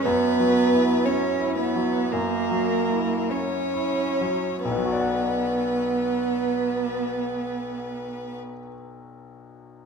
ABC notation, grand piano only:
X:1
M:4/4
L:1/8
Q:1/4=46
K:Bm
V:1 name="Grand piano"
(3F,, F, E (3c E F, (3F,, F, E (3c E F, | [B,,,B,,F,Fdf]8 |]